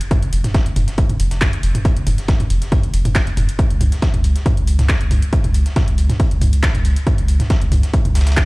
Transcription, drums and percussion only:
0.01 closed hi-hat soft
0.01 closed hi-hat medium
0.11 kick loud
0.11 closed hi-hat medium
0.11 mid tom medium
0.23 closed hi-hat medium
0.33 closed hi-hat medium
0.33 open hi-hat loud
0.44 snare soft
0.44 closed hi-hat medium
0.44 mid tom medium
0.54 kick loud
0.54 snare loud
0.54 closed hi-hat medium
0.66 closed hi-hat medium
0.76 closed hi-hat medium
0.76 mid tom medium
0.76 open hi-hat loud
0.88 snare soft
0.88 closed hi-hat medium
0.98 kick loud
0.98 closed hi-hat medium
1.09 closed hi-hat medium
1.09 mid tom medium
1.20 closed hi-hat medium
1.20 open hi-hat loud
1.31 snare medium
1.31 closed hi-hat medium
1.41 kick loud
1.41 snare loud
1.41 clap loud
1.41 closed hi-hat medium
1.41 mid tom medium
1.53 closed hi-hat medium
1.63 closed hi-hat medium
1.63 open hi-hat loud
1.75 closed hi-hat medium
1.75 mid tom medium
1.85 kick loud
1.85 closed hi-hat medium
1.97 closed hi-hat medium
2.07 closed hi-hat medium
2.07 mid tom medium
2.07 open hi-hat loud
2.18 snare soft
2.18 closed hi-hat medium
2.28 kick loud
2.28 snare loud
2.28 closed hi-hat medium
2.40 closed hi-hat medium
2.40 mid tom medium
2.50 closed hi-hat medium
2.50 open hi-hat loud
2.62 snare soft
2.62 closed hi-hat medium
2.72 kick loud
2.72 closed hi-hat medium
2.72 mid tom medium
2.72 open hi-hat medium
2.83 closed hi-hat medium
2.94 closed hi-hat medium
2.94 open hi-hat loud
3.05 closed hi-hat soft
3.05 closed hi-hat medium
3.05 mid tom medium
3.15 kick loud
3.15 snare loud
3.15 clap loud
3.15 closed hi-hat medium
3.27 closed hi-hat soft
3.27 closed hi-hat medium
3.37 closed hi-hat medium
3.37 mid tom medium
3.37 open hi-hat loud
3.49 closed hi-hat soft
3.49 closed hi-hat medium
3.59 kick loud
3.59 closed hi-hat medium
3.70 closed hi-hat medium
3.81 closed hi-hat medium
3.81 mid tom medium
3.81 open hi-hat loud
3.92 snare soft
3.92 closed hi-hat medium
4.02 kick loud
4.02 snare loud
4.02 closed hi-hat medium
4.14 closed hi-hat medium
4.14 mid tom medium
4.24 closed hi-hat medium
4.24 open hi-hat medium
4.36 snare soft
4.36 closed hi-hat medium
4.46 kick loud
4.46 closed hi-hat medium
4.46 mid tom medium
4.57 closed hi-hat medium
4.67 closed hi-hat medium
4.67 open hi-hat loud
4.79 snare medium
4.79 closed hi-hat medium
4.79 mid tom medium
4.89 kick loud
4.89 snare loud
4.89 clap loud
4.89 closed hi-hat medium
5.01 closed hi-hat medium
5.11 closed hi-hat medium
5.11 mid tom medium
5.11 open hi-hat medium
5.22 closed hi-hat medium
5.33 kick loud
5.33 closed hi-hat medium
5.44 closed hi-hat medium
5.44 mid tom medium
5.54 closed hi-hat medium
5.54 open hi-hat loud
5.66 snare soft
5.66 closed hi-hat medium
5.76 kick loud
5.76 snare loud
5.76 closed hi-hat medium
5.76 mid tom medium
5.88 closed hi-hat medium
5.98 closed hi-hat medium
5.98 open hi-hat medium
6.09 snare soft
6.09 closed hi-hat medium
6.09 mid tom medium
6.20 kick loud
6.20 closed hi-hat medium
6.20 open hi-hat medium
6.31 closed hi-hat medium
6.41 closed hi-hat medium
6.41 mid tom medium
6.41 open hi-hat loud
6.53 closed hi-hat soft
6.53 closed hi-hat medium
6.63 kick loud
6.63 snare loud
6.63 clap loud
6.63 closed hi-hat medium
6.75 closed hi-hat soft
6.75 closed hi-hat medium
6.75 mid tom medium
6.85 closed hi-hat medium
6.85 open hi-hat medium
6.96 closed hi-hat medium
6.96 closed hi-hat soft
7.07 kick loud
7.07 closed hi-hat medium
7.07 mid tom medium
7.18 closed hi-hat medium
7.28 closed hi-hat medium
7.28 open hi-hat loud
7.40 snare soft
7.40 closed hi-hat medium
7.40 mid tom medium
7.50 kick loud
7.50 snare loud
7.50 closed hi-hat medium
7.62 closed hi-hat medium
7.72 closed hi-hat medium
7.72 mid tom medium
7.72 open hi-hat medium
7.83 snare soft
7.83 closed hi-hat medium
7.93 kick loud
7.93 closed hi-hat medium
8.05 closed hi-hat medium
8.05 mid tom medium
8.15 snare medium
8.15 closed hi-hat medium
8.15 open hi-hat loud
8.21 snare loud
8.21 closed hi-hat medium
8.27 snare medium
8.27 closed hi-hat medium
8.32 snare medium
8.32 closed hi-hat medium
8.37 kick loud
8.37 snare loud
8.37 clap loud
8.37 closed hi-hat medium
8.37 mid tom medium

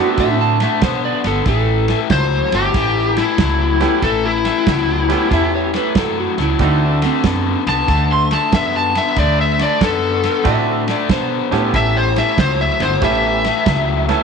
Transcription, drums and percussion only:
0.18 kick medium
0.18 snare soft
0.18 ride medium
0.60 snare soft
0.60 ride medium
0.81 kick medium
0.81 snare loud
0.81 ride medium
1.24 snare soft
1.24 ride medium
1.46 kick medium
1.46 snare soft
1.46 ride medium
1.88 snare soft
1.88 ride medium
2.10 kick medium
2.10 snare medium
2.10 ride medium
2.52 snare soft
2.52 ride medium
2.74 kick medium
2.74 snare soft
2.74 ride medium
3.17 snare soft
3.17 ride medium
3.38 kick medium
3.38 snare loud
3.38 ride medium
3.81 snare soft
3.81 ride medium
4.02 kick medium
4.02 snare soft
4.02 ride medium
4.45 snare soft
4.45 ride medium
4.67 kick medium
4.67 snare loud
4.67 ride medium
5.10 snare soft
5.10 ride medium
5.31 kick medium
5.31 snare soft
5.31 ride medium
5.74 snare soft
5.74 ride medium
5.95 kick medium
5.95 snare loud
5.95 ride medium
6.38 snare soft
6.38 ride medium
6.59 kick medium
6.59 snare soft
6.59 ride medium
7.02 snare soft
7.02 ride medium
7.24 kick medium
7.24 snare loud
7.24 ride medium
7.67 snare soft
7.67 ride medium
7.88 kick medium
7.88 snare soft
7.88 ride medium
8.31 snare soft
8.31 ride medium
8.52 kick medium
8.52 snare loud
8.52 ride medium
8.95 snare soft
8.95 ride medium
9.16 kick medium
9.16 snare soft
9.16 ride medium
9.59 snare soft
9.59 ride medium
9.81 kick medium
9.81 snare loud
9.81 ride medium
10.23 snare soft
10.23 ride medium
10.45 kick medium
10.45 snare soft
10.45 ride medium
10.88 snare soft
10.88 ride medium
11.09 kick medium
11.09 snare loud
11.09 ride medium
11.52 snare soft
11.52 ride medium
11.74 kick medium
11.74 snare soft
11.74 ride medium
12.16 snare soft
12.16 ride medium
12.38 kick medium
12.38 snare medium
12.38 ride medium
12.80 snare soft
12.80 ride medium
13.02 kick medium
13.02 snare soft
13.02 ride medium
13.45 snare soft
13.45 ride medium
13.66 kick medium
13.66 snare loud
13.66 ride medium
14.09 snare soft
14.09 ride medium

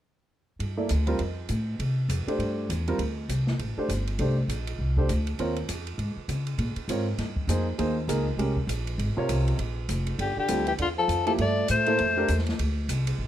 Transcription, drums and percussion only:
0.60 ride soft
0.89 hi-hat pedal soft
0.89 ride medium
1.07 ride soft
1.19 ride soft
1.49 hi-hat pedal soft
1.49 ride soft
1.80 ride soft
2.10 hi-hat pedal soft
2.10 ride medium
2.28 ride soft
2.40 ride soft
2.70 hi-hat pedal soft
2.70 ride soft
2.88 ride soft
2.99 ride soft
3.29 hi-hat pedal medium
3.29 ride soft
3.47 snare soft
3.59 ride soft
3.89 hi-hat pedal soft
3.89 ride soft
4.07 ride soft
4.19 ride soft
4.49 hi-hat pedal soft
4.49 ride medium
4.67 ride soft
4.97 kick soft
5.09 hi-hat pedal soft
5.09 ride soft
5.27 ride soft
5.39 ride soft
5.56 ride soft
5.69 hi-hat pedal soft
5.69 ride medium
5.87 ride soft
5.99 ride soft
6.29 hi-hat pedal soft
6.29 ride soft
6.47 ride soft
6.59 ride soft
6.76 ride soft
6.89 hi-hat pedal medium
6.89 ride medium
7.18 snare soft
7.18 ride soft
7.36 kick soft
7.49 hi-hat pedal soft
7.49 ride soft
7.79 ride soft
8.09 hi-hat pedal medium
8.09 ride medium
8.39 ride soft
8.57 kick soft
8.69 hi-hat pedal soft
8.69 ride medium
8.87 ride soft
8.99 ride soft
9.29 hi-hat pedal soft
9.29 ride medium
9.48 ride soft
9.59 ride soft
9.89 hi-hat pedal soft
9.89 ride medium
10.07 ride soft
10.19 ride soft
10.48 hi-hat pedal soft
10.48 ride medium
10.67 ride soft
10.79 ride soft
11.09 hi-hat pedal soft
11.09 ride soft
11.27 ride soft
11.38 ride soft
11.68 hi-hat pedal medium
11.68 ride medium
11.86 ride soft
11.99 ride soft
12.28 hi-hat pedal soft
12.28 ride medium
12.38 snare soft
12.47 snare soft
12.47 ride soft
12.59 ride medium
12.89 hi-hat pedal soft
12.89 ride medium
13.07 ride medium

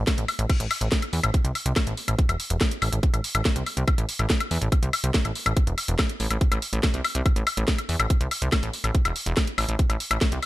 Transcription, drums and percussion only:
0.07 kick loud
0.07 snare loud
0.07 closed hi-hat medium
0.07 high woodblock soft
0.18 closed hi-hat medium
0.28 open hi-hat medium
0.28 high woodblock medium
0.39 closed hi-hat medium
0.50 kick loud
0.50 closed hi-hat medium
0.50 crash medium
0.50 high woodblock soft
0.60 closed hi-hat medium
0.71 open hi-hat loud
0.71 high woodblock medium
0.81 closed hi-hat medium
0.92 kick loud
0.92 snare loud
0.92 closed hi-hat medium
1.02 closed hi-hat medium
1.02 high woodblock soft
1.13 open hi-hat loud
1.23 closed hi-hat medium
1.23 high woodblock medium
1.34 kick loud
1.34 closed hi-hat medium
1.45 closed hi-hat medium
1.55 open hi-hat loud
1.55 high woodblock soft
1.66 closed hi-hat medium
1.76 kick loud
1.76 snare loud
1.76 closed hi-hat medium
1.76 high woodblock medium
1.87 closed hi-hat medium
1.97 open hi-hat medium
2.08 closed hi-hat medium
2.08 high woodblock soft
2.19 kick loud
2.19 closed hi-hat medium
2.29 closed hi-hat medium
2.29 high woodblock medium
2.40 open hi-hat loud
2.50 closed hi-hat medium
2.61 kick loud
2.61 snare loud
2.61 closed hi-hat medium
2.61 high woodblock soft
2.71 closed hi-hat medium
2.82 open hi-hat loud
2.82 high woodblock medium
2.93 closed hi-hat medium
3.03 kick loud
3.03 closed hi-hat medium
3.14 closed hi-hat medium
3.14 high woodblock soft
3.24 open hi-hat loud
3.35 closed hi-hat medium
3.35 high woodblock medium
3.45 kick loud
3.45 snare loud
3.45 closed hi-hat medium
3.56 closed hi-hat medium
3.66 open hi-hat loud
3.66 high woodblock soft
3.77 closed hi-hat medium
3.88 kick loud
3.88 closed hi-hat medium
3.88 high woodblock medium
3.98 closed hi-hat medium
4.09 open hi-hat loud
4.19 closed hi-hat medium
4.19 high woodblock soft
4.30 kick loud
4.30 snare loud
4.30 closed hi-hat medium
4.40 closed hi-hat medium
4.40 high woodblock medium
4.51 open hi-hat loud
4.62 closed hi-hat medium
4.72 kick loud
4.72 closed hi-hat medium
4.72 high woodblock soft
4.83 closed hi-hat medium
4.93 open hi-hat loud
4.93 high woodblock medium
5.04 closed hi-hat medium
5.14 kick loud
5.14 snare loud
5.14 closed hi-hat medium
5.25 closed hi-hat medium
5.25 high woodblock soft
5.35 open hi-hat loud
5.46 closed hi-hat medium
5.46 high woodblock medium
5.57 kick loud
5.57 closed hi-hat medium
5.67 closed hi-hat medium
5.78 open hi-hat loud
5.78 high woodblock soft
5.88 closed hi-hat medium
5.99 kick loud
5.99 snare loud
5.99 closed hi-hat medium
5.99 high woodblock medium
6.09 closed hi-hat medium
6.20 open hi-hat loud
6.30 closed hi-hat medium
6.30 high woodblock soft
6.41 kick loud
6.41 closed hi-hat medium
6.52 closed hi-hat medium
6.52 high woodblock medium
6.62 open hi-hat loud
6.73 closed hi-hat medium
6.83 kick loud
6.83 snare loud
6.83 closed hi-hat medium
6.83 high woodblock soft
6.94 closed hi-hat medium
7.04 open hi-hat loud
7.04 high woodblock medium
7.15 closed hi-hat medium
7.26 kick loud
7.26 closed hi-hat medium
7.26 high woodblock soft
7.36 closed hi-hat medium
7.47 open hi-hat loud
7.47 high woodblock medium
7.57 closed hi-hat medium
7.68 kick loud
7.68 snare loud
7.68 closed hi-hat medium
7.78 closed hi-hat medium
7.78 high woodblock soft
7.89 open hi-hat medium
8.00 closed hi-hat medium
8.00 high woodblock medium
8.10 kick loud
8.10 closed hi-hat medium
8.21 closed hi-hat medium
8.31 open hi-hat loud
8.31 high woodblock soft
8.42 closed hi-hat medium
8.52 kick loud
8.52 snare loud
8.52 closed hi-hat medium
8.52 high woodblock medium
8.63 closed hi-hat medium
8.73 open hi-hat medium
8.84 closed hi-hat medium
8.84 high woodblock soft
8.95 kick loud
8.95 closed hi-hat medium
9.05 closed hi-hat medium
9.05 high woodblock medium
9.16 open hi-hat loud
9.26 closed hi-hat medium
9.37 kick loud
9.37 snare loud
9.37 closed hi-hat medium
9.37 high woodblock soft
9.47 closed hi-hat medium
9.58 open hi-hat medium
9.58 high woodblock medium
9.69 closed hi-hat medium
9.79 kick loud
9.79 closed hi-hat medium
9.90 closed hi-hat medium
9.90 high woodblock soft
10.00 open hi-hat loud
10.11 closed hi-hat medium
10.11 high woodblock medium
10.21 kick loud
10.21 snare loud
10.21 closed hi-hat medium
10.32 closed hi-hat medium
10.43 open hi-hat medium
10.43 high woodblock soft

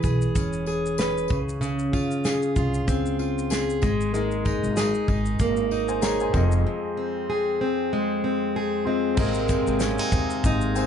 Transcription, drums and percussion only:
0.03 kick medium
0.03 tambourine soft
0.03 shaker soft
0.21 shaker soft
0.35 kick medium
0.35 tambourine soft
0.35 shaker medium
0.53 shaker soft
0.66 tambourine soft
0.86 shaker medium
0.98 snare loud
0.98 tambourine medium
0.98 shaker medium
1.18 shaker soft
1.28 kick loud
1.28 tambourine soft
1.49 shaker soft
1.61 tambourine soft
1.61 shaker medium
1.79 shaker soft
1.93 kick medium
1.93 tambourine soft
2.11 shaker soft
2.24 snare loud
2.24 tambourine medium
2.24 shaker medium
2.42 shaker soft
2.56 kick medium
2.56 tambourine soft
2.56 shaker medium
2.74 shaker soft
2.87 kick medium
2.87 tambourine soft
2.87 shaker medium
3.06 shaker soft
3.19 tambourine soft
3.38 shaker medium
3.50 snare loud
3.50 tambourine medium
3.50 shaker medium
3.70 shaker soft
3.82 kick medium
3.82 snare soft
3.82 tambourine soft
3.82 shaker medium
4.01 shaker soft
4.14 shaker medium
4.31 shaker medium
4.45 kick medium
4.45 tambourine soft
4.64 shaker soft
4.76 snare medium
4.76 tambourine medium
4.76 shaker medium
4.94 shaker soft
5.08 kick medium
5.08 tambourine soft
5.26 shaker soft
5.39 kick medium
5.39 tambourine soft
5.39 shaker medium
5.57 shaker soft
5.71 tambourine soft
5.88 shaker medium
6.02 snare loud
6.02 tambourine medium
6.02 shaker medium
6.20 shaker soft
6.34 kick medium
6.34 snare soft
6.34 tambourine soft
6.52 shaker medium
9.17 kick loud
9.17 crash medium
9.34 shaker medium
9.48 kick medium
9.48 tambourine soft
9.48 shaker medium
9.67 shaker soft
9.80 snare loud
9.80 tambourine medium
9.80 shaker medium
9.98 shaker soft
10.12 kick medium
10.12 tambourine soft
10.12 shaker soft
10.30 shaker medium
10.44 kick medium
10.44 tambourine soft
10.44 shaker medium
10.61 shaker medium
10.76 tambourine medium
10.76 shaker medium

